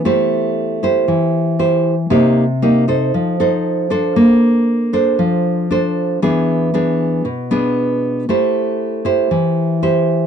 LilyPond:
\new Staff \with { instrumentName = "Nylon-string guitar" } { \time 4/4 \key a \phrygian \tempo 4 = 117 << { <e' g' c''>4. <e' g' c''>4. <e' g' c''>8 r8 | <bes ees' g'>8 r8 <bes ees' g'>8 <ees' a' c''>4 <ees' a' c''>4 <d' a' c''>8~ | <d' a' c''>4. <d' a' c''>4. <d' a' c''>4 | <b d' gis'>4 <b d' gis'>4 r8 <b d' gis'>4. |
<e' g' c''>4. <e' g' c''>4. <e' g' c''>4 | } \\ { a2 e2 | c2 f2 | bes2 f2 | e2 b,2 |
a2 e2 | } >> }